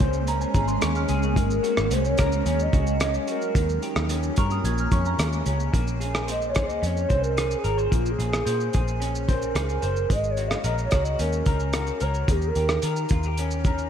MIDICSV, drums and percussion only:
0, 0, Header, 1, 2, 480
1, 0, Start_track
1, 0, Key_signature, -5, "minor"
1, 0, Tempo, 545951
1, 1200, Time_signature, 4, 2, 24, 8
1, 12216, End_track
2, 0, Start_track
2, 0, Title_t, "Drums"
2, 5, Note_on_c, 9, 36, 87
2, 93, Note_off_c, 9, 36, 0
2, 116, Note_on_c, 9, 82, 52
2, 204, Note_off_c, 9, 82, 0
2, 241, Note_on_c, 9, 42, 60
2, 241, Note_on_c, 9, 82, 65
2, 329, Note_off_c, 9, 42, 0
2, 329, Note_off_c, 9, 82, 0
2, 362, Note_on_c, 9, 82, 56
2, 450, Note_off_c, 9, 82, 0
2, 478, Note_on_c, 9, 42, 48
2, 478, Note_on_c, 9, 82, 46
2, 480, Note_on_c, 9, 36, 91
2, 566, Note_off_c, 9, 42, 0
2, 566, Note_off_c, 9, 82, 0
2, 567, Note_off_c, 9, 36, 0
2, 597, Note_on_c, 9, 82, 56
2, 685, Note_off_c, 9, 82, 0
2, 717, Note_on_c, 9, 42, 75
2, 717, Note_on_c, 9, 82, 77
2, 722, Note_on_c, 9, 37, 98
2, 805, Note_off_c, 9, 42, 0
2, 805, Note_off_c, 9, 82, 0
2, 810, Note_off_c, 9, 37, 0
2, 837, Note_on_c, 9, 82, 51
2, 925, Note_off_c, 9, 82, 0
2, 953, Note_on_c, 9, 42, 52
2, 953, Note_on_c, 9, 82, 53
2, 1041, Note_off_c, 9, 42, 0
2, 1041, Note_off_c, 9, 82, 0
2, 1079, Note_on_c, 9, 82, 46
2, 1167, Note_off_c, 9, 82, 0
2, 1199, Note_on_c, 9, 36, 100
2, 1203, Note_on_c, 9, 42, 66
2, 1203, Note_on_c, 9, 82, 67
2, 1287, Note_off_c, 9, 36, 0
2, 1291, Note_off_c, 9, 42, 0
2, 1291, Note_off_c, 9, 82, 0
2, 1323, Note_on_c, 9, 82, 51
2, 1411, Note_off_c, 9, 82, 0
2, 1441, Note_on_c, 9, 42, 51
2, 1441, Note_on_c, 9, 82, 51
2, 1529, Note_off_c, 9, 42, 0
2, 1529, Note_off_c, 9, 82, 0
2, 1556, Note_on_c, 9, 82, 44
2, 1559, Note_on_c, 9, 37, 89
2, 1644, Note_off_c, 9, 82, 0
2, 1647, Note_off_c, 9, 37, 0
2, 1679, Note_on_c, 9, 42, 85
2, 1679, Note_on_c, 9, 82, 84
2, 1767, Note_off_c, 9, 42, 0
2, 1767, Note_off_c, 9, 82, 0
2, 1800, Note_on_c, 9, 82, 54
2, 1888, Note_off_c, 9, 82, 0
2, 1913, Note_on_c, 9, 42, 62
2, 1913, Note_on_c, 9, 82, 62
2, 1923, Note_on_c, 9, 37, 91
2, 1926, Note_on_c, 9, 36, 85
2, 2001, Note_off_c, 9, 42, 0
2, 2001, Note_off_c, 9, 82, 0
2, 2011, Note_off_c, 9, 37, 0
2, 2014, Note_off_c, 9, 36, 0
2, 2041, Note_on_c, 9, 82, 49
2, 2129, Note_off_c, 9, 82, 0
2, 2162, Note_on_c, 9, 42, 62
2, 2162, Note_on_c, 9, 82, 64
2, 2250, Note_off_c, 9, 42, 0
2, 2250, Note_off_c, 9, 82, 0
2, 2281, Note_on_c, 9, 82, 59
2, 2369, Note_off_c, 9, 82, 0
2, 2402, Note_on_c, 9, 36, 87
2, 2402, Note_on_c, 9, 42, 46
2, 2402, Note_on_c, 9, 82, 47
2, 2489, Note_off_c, 9, 42, 0
2, 2489, Note_off_c, 9, 82, 0
2, 2490, Note_off_c, 9, 36, 0
2, 2522, Note_on_c, 9, 82, 55
2, 2610, Note_off_c, 9, 82, 0
2, 2640, Note_on_c, 9, 42, 78
2, 2640, Note_on_c, 9, 82, 72
2, 2645, Note_on_c, 9, 37, 100
2, 2728, Note_off_c, 9, 42, 0
2, 2728, Note_off_c, 9, 82, 0
2, 2733, Note_off_c, 9, 37, 0
2, 2761, Note_on_c, 9, 82, 54
2, 2849, Note_off_c, 9, 82, 0
2, 2880, Note_on_c, 9, 42, 47
2, 2880, Note_on_c, 9, 82, 51
2, 2968, Note_off_c, 9, 42, 0
2, 2968, Note_off_c, 9, 82, 0
2, 3003, Note_on_c, 9, 82, 46
2, 3091, Note_off_c, 9, 82, 0
2, 3122, Note_on_c, 9, 36, 99
2, 3127, Note_on_c, 9, 42, 65
2, 3127, Note_on_c, 9, 82, 69
2, 3210, Note_off_c, 9, 36, 0
2, 3215, Note_off_c, 9, 42, 0
2, 3215, Note_off_c, 9, 82, 0
2, 3247, Note_on_c, 9, 82, 53
2, 3334, Note_off_c, 9, 82, 0
2, 3363, Note_on_c, 9, 42, 52
2, 3363, Note_on_c, 9, 82, 52
2, 3451, Note_off_c, 9, 42, 0
2, 3451, Note_off_c, 9, 82, 0
2, 3480, Note_on_c, 9, 82, 43
2, 3483, Note_on_c, 9, 37, 91
2, 3568, Note_off_c, 9, 82, 0
2, 3571, Note_off_c, 9, 37, 0
2, 3599, Note_on_c, 9, 42, 85
2, 3599, Note_on_c, 9, 82, 80
2, 3687, Note_off_c, 9, 42, 0
2, 3687, Note_off_c, 9, 82, 0
2, 3719, Note_on_c, 9, 82, 56
2, 3807, Note_off_c, 9, 82, 0
2, 3836, Note_on_c, 9, 42, 58
2, 3836, Note_on_c, 9, 82, 63
2, 3849, Note_on_c, 9, 36, 85
2, 3924, Note_off_c, 9, 42, 0
2, 3924, Note_off_c, 9, 82, 0
2, 3937, Note_off_c, 9, 36, 0
2, 3961, Note_on_c, 9, 82, 49
2, 4049, Note_off_c, 9, 82, 0
2, 4087, Note_on_c, 9, 42, 67
2, 4087, Note_on_c, 9, 82, 64
2, 4174, Note_off_c, 9, 42, 0
2, 4174, Note_off_c, 9, 82, 0
2, 4201, Note_on_c, 9, 82, 58
2, 4289, Note_off_c, 9, 82, 0
2, 4321, Note_on_c, 9, 42, 49
2, 4321, Note_on_c, 9, 82, 46
2, 4323, Note_on_c, 9, 36, 94
2, 4409, Note_off_c, 9, 42, 0
2, 4409, Note_off_c, 9, 82, 0
2, 4411, Note_off_c, 9, 36, 0
2, 4442, Note_on_c, 9, 82, 53
2, 4530, Note_off_c, 9, 82, 0
2, 4562, Note_on_c, 9, 42, 75
2, 4562, Note_on_c, 9, 82, 72
2, 4568, Note_on_c, 9, 37, 92
2, 4650, Note_off_c, 9, 42, 0
2, 4650, Note_off_c, 9, 82, 0
2, 4656, Note_off_c, 9, 37, 0
2, 4682, Note_on_c, 9, 82, 53
2, 4770, Note_off_c, 9, 82, 0
2, 4799, Note_on_c, 9, 42, 50
2, 4799, Note_on_c, 9, 82, 51
2, 4887, Note_off_c, 9, 42, 0
2, 4887, Note_off_c, 9, 82, 0
2, 4922, Note_on_c, 9, 82, 47
2, 5010, Note_off_c, 9, 82, 0
2, 5043, Note_on_c, 9, 36, 96
2, 5044, Note_on_c, 9, 42, 66
2, 5044, Note_on_c, 9, 82, 64
2, 5131, Note_off_c, 9, 36, 0
2, 5132, Note_off_c, 9, 42, 0
2, 5132, Note_off_c, 9, 82, 0
2, 5165, Note_on_c, 9, 82, 48
2, 5253, Note_off_c, 9, 82, 0
2, 5285, Note_on_c, 9, 42, 49
2, 5285, Note_on_c, 9, 82, 49
2, 5373, Note_off_c, 9, 42, 0
2, 5373, Note_off_c, 9, 82, 0
2, 5403, Note_on_c, 9, 82, 43
2, 5405, Note_on_c, 9, 37, 92
2, 5491, Note_off_c, 9, 82, 0
2, 5493, Note_off_c, 9, 37, 0
2, 5523, Note_on_c, 9, 42, 80
2, 5523, Note_on_c, 9, 82, 76
2, 5611, Note_off_c, 9, 42, 0
2, 5611, Note_off_c, 9, 82, 0
2, 5642, Note_on_c, 9, 82, 49
2, 5730, Note_off_c, 9, 82, 0
2, 5757, Note_on_c, 9, 42, 58
2, 5757, Note_on_c, 9, 82, 59
2, 5766, Note_on_c, 9, 37, 86
2, 5771, Note_on_c, 9, 36, 89
2, 5844, Note_off_c, 9, 42, 0
2, 5844, Note_off_c, 9, 82, 0
2, 5854, Note_off_c, 9, 37, 0
2, 5858, Note_off_c, 9, 36, 0
2, 5887, Note_on_c, 9, 82, 46
2, 5975, Note_off_c, 9, 82, 0
2, 6007, Note_on_c, 9, 42, 61
2, 6007, Note_on_c, 9, 82, 59
2, 6095, Note_off_c, 9, 42, 0
2, 6095, Note_off_c, 9, 82, 0
2, 6127, Note_on_c, 9, 82, 50
2, 6215, Note_off_c, 9, 82, 0
2, 6241, Note_on_c, 9, 42, 46
2, 6241, Note_on_c, 9, 82, 44
2, 6244, Note_on_c, 9, 36, 86
2, 6329, Note_off_c, 9, 42, 0
2, 6329, Note_off_c, 9, 82, 0
2, 6332, Note_off_c, 9, 36, 0
2, 6363, Note_on_c, 9, 82, 51
2, 6451, Note_off_c, 9, 82, 0
2, 6484, Note_on_c, 9, 42, 76
2, 6484, Note_on_c, 9, 82, 76
2, 6489, Note_on_c, 9, 37, 91
2, 6572, Note_off_c, 9, 42, 0
2, 6572, Note_off_c, 9, 82, 0
2, 6577, Note_off_c, 9, 37, 0
2, 6602, Note_on_c, 9, 82, 54
2, 6690, Note_off_c, 9, 82, 0
2, 6720, Note_on_c, 9, 42, 51
2, 6720, Note_on_c, 9, 82, 49
2, 6808, Note_off_c, 9, 42, 0
2, 6808, Note_off_c, 9, 82, 0
2, 6844, Note_on_c, 9, 82, 43
2, 6932, Note_off_c, 9, 82, 0
2, 6963, Note_on_c, 9, 36, 96
2, 6966, Note_on_c, 9, 42, 62
2, 6966, Note_on_c, 9, 82, 65
2, 7051, Note_off_c, 9, 36, 0
2, 7054, Note_off_c, 9, 42, 0
2, 7054, Note_off_c, 9, 82, 0
2, 7085, Note_on_c, 9, 82, 49
2, 7173, Note_off_c, 9, 82, 0
2, 7207, Note_on_c, 9, 42, 50
2, 7207, Note_on_c, 9, 82, 52
2, 7295, Note_off_c, 9, 42, 0
2, 7295, Note_off_c, 9, 82, 0
2, 7325, Note_on_c, 9, 82, 42
2, 7328, Note_on_c, 9, 37, 88
2, 7413, Note_off_c, 9, 82, 0
2, 7416, Note_off_c, 9, 37, 0
2, 7444, Note_on_c, 9, 42, 76
2, 7444, Note_on_c, 9, 82, 75
2, 7532, Note_off_c, 9, 42, 0
2, 7532, Note_off_c, 9, 82, 0
2, 7564, Note_on_c, 9, 82, 50
2, 7652, Note_off_c, 9, 82, 0
2, 7678, Note_on_c, 9, 42, 60
2, 7678, Note_on_c, 9, 82, 59
2, 7690, Note_on_c, 9, 36, 84
2, 7766, Note_off_c, 9, 42, 0
2, 7766, Note_off_c, 9, 82, 0
2, 7778, Note_off_c, 9, 36, 0
2, 7805, Note_on_c, 9, 82, 51
2, 7892, Note_off_c, 9, 82, 0
2, 7928, Note_on_c, 9, 42, 63
2, 7928, Note_on_c, 9, 82, 62
2, 8015, Note_off_c, 9, 42, 0
2, 8015, Note_off_c, 9, 82, 0
2, 8047, Note_on_c, 9, 82, 56
2, 8135, Note_off_c, 9, 82, 0
2, 8164, Note_on_c, 9, 36, 88
2, 8164, Note_on_c, 9, 42, 47
2, 8164, Note_on_c, 9, 82, 45
2, 8252, Note_off_c, 9, 36, 0
2, 8252, Note_off_c, 9, 42, 0
2, 8252, Note_off_c, 9, 82, 0
2, 8283, Note_on_c, 9, 82, 53
2, 8371, Note_off_c, 9, 82, 0
2, 8400, Note_on_c, 9, 42, 73
2, 8400, Note_on_c, 9, 82, 74
2, 8406, Note_on_c, 9, 37, 94
2, 8488, Note_off_c, 9, 42, 0
2, 8488, Note_off_c, 9, 82, 0
2, 8494, Note_off_c, 9, 37, 0
2, 8522, Note_on_c, 9, 82, 55
2, 8609, Note_off_c, 9, 82, 0
2, 8637, Note_on_c, 9, 42, 49
2, 8637, Note_on_c, 9, 82, 51
2, 8725, Note_off_c, 9, 42, 0
2, 8725, Note_off_c, 9, 82, 0
2, 8759, Note_on_c, 9, 82, 44
2, 8847, Note_off_c, 9, 82, 0
2, 8880, Note_on_c, 9, 36, 92
2, 8883, Note_on_c, 9, 42, 68
2, 8883, Note_on_c, 9, 82, 62
2, 8968, Note_off_c, 9, 36, 0
2, 8971, Note_off_c, 9, 42, 0
2, 8971, Note_off_c, 9, 82, 0
2, 9002, Note_on_c, 9, 82, 47
2, 9090, Note_off_c, 9, 82, 0
2, 9118, Note_on_c, 9, 42, 51
2, 9118, Note_on_c, 9, 82, 50
2, 9206, Note_off_c, 9, 42, 0
2, 9206, Note_off_c, 9, 82, 0
2, 9237, Note_on_c, 9, 82, 43
2, 9239, Note_on_c, 9, 37, 89
2, 9325, Note_off_c, 9, 82, 0
2, 9327, Note_off_c, 9, 37, 0
2, 9355, Note_on_c, 9, 42, 78
2, 9355, Note_on_c, 9, 82, 75
2, 9443, Note_off_c, 9, 42, 0
2, 9443, Note_off_c, 9, 82, 0
2, 9480, Note_on_c, 9, 82, 54
2, 9568, Note_off_c, 9, 82, 0
2, 9591, Note_on_c, 9, 42, 61
2, 9591, Note_on_c, 9, 82, 59
2, 9601, Note_on_c, 9, 37, 94
2, 9607, Note_on_c, 9, 36, 86
2, 9679, Note_off_c, 9, 42, 0
2, 9679, Note_off_c, 9, 82, 0
2, 9689, Note_off_c, 9, 37, 0
2, 9695, Note_off_c, 9, 36, 0
2, 9717, Note_on_c, 9, 82, 51
2, 9805, Note_off_c, 9, 82, 0
2, 9840, Note_on_c, 9, 42, 61
2, 9840, Note_on_c, 9, 82, 65
2, 9928, Note_off_c, 9, 42, 0
2, 9928, Note_off_c, 9, 82, 0
2, 9958, Note_on_c, 9, 82, 53
2, 10046, Note_off_c, 9, 82, 0
2, 10073, Note_on_c, 9, 42, 48
2, 10073, Note_on_c, 9, 82, 47
2, 10079, Note_on_c, 9, 36, 86
2, 10161, Note_off_c, 9, 42, 0
2, 10161, Note_off_c, 9, 82, 0
2, 10167, Note_off_c, 9, 36, 0
2, 10195, Note_on_c, 9, 82, 51
2, 10283, Note_off_c, 9, 82, 0
2, 10313, Note_on_c, 9, 42, 74
2, 10313, Note_on_c, 9, 82, 70
2, 10318, Note_on_c, 9, 37, 99
2, 10400, Note_off_c, 9, 42, 0
2, 10400, Note_off_c, 9, 82, 0
2, 10406, Note_off_c, 9, 37, 0
2, 10435, Note_on_c, 9, 82, 52
2, 10523, Note_off_c, 9, 82, 0
2, 10553, Note_on_c, 9, 42, 48
2, 10553, Note_on_c, 9, 82, 47
2, 10641, Note_off_c, 9, 42, 0
2, 10641, Note_off_c, 9, 82, 0
2, 10676, Note_on_c, 9, 82, 45
2, 10764, Note_off_c, 9, 82, 0
2, 10798, Note_on_c, 9, 36, 102
2, 10800, Note_on_c, 9, 42, 69
2, 10800, Note_on_c, 9, 82, 70
2, 10886, Note_off_c, 9, 36, 0
2, 10888, Note_off_c, 9, 42, 0
2, 10888, Note_off_c, 9, 82, 0
2, 10917, Note_on_c, 9, 82, 47
2, 11005, Note_off_c, 9, 82, 0
2, 11038, Note_on_c, 9, 42, 49
2, 11038, Note_on_c, 9, 82, 52
2, 11126, Note_off_c, 9, 42, 0
2, 11126, Note_off_c, 9, 82, 0
2, 11154, Note_on_c, 9, 82, 41
2, 11157, Note_on_c, 9, 37, 94
2, 11242, Note_off_c, 9, 82, 0
2, 11244, Note_off_c, 9, 37, 0
2, 11274, Note_on_c, 9, 42, 82
2, 11274, Note_on_c, 9, 82, 80
2, 11361, Note_off_c, 9, 42, 0
2, 11361, Note_off_c, 9, 82, 0
2, 11397, Note_on_c, 9, 82, 53
2, 11485, Note_off_c, 9, 82, 0
2, 11507, Note_on_c, 9, 42, 58
2, 11507, Note_on_c, 9, 82, 59
2, 11524, Note_on_c, 9, 36, 85
2, 11595, Note_off_c, 9, 42, 0
2, 11595, Note_off_c, 9, 82, 0
2, 11612, Note_off_c, 9, 36, 0
2, 11634, Note_on_c, 9, 82, 50
2, 11722, Note_off_c, 9, 82, 0
2, 11759, Note_on_c, 9, 42, 67
2, 11759, Note_on_c, 9, 82, 61
2, 11847, Note_off_c, 9, 42, 0
2, 11847, Note_off_c, 9, 82, 0
2, 11877, Note_on_c, 9, 82, 54
2, 11965, Note_off_c, 9, 82, 0
2, 11997, Note_on_c, 9, 42, 48
2, 11997, Note_on_c, 9, 82, 49
2, 11999, Note_on_c, 9, 36, 86
2, 12085, Note_off_c, 9, 42, 0
2, 12085, Note_off_c, 9, 82, 0
2, 12087, Note_off_c, 9, 36, 0
2, 12119, Note_on_c, 9, 82, 48
2, 12207, Note_off_c, 9, 82, 0
2, 12216, End_track
0, 0, End_of_file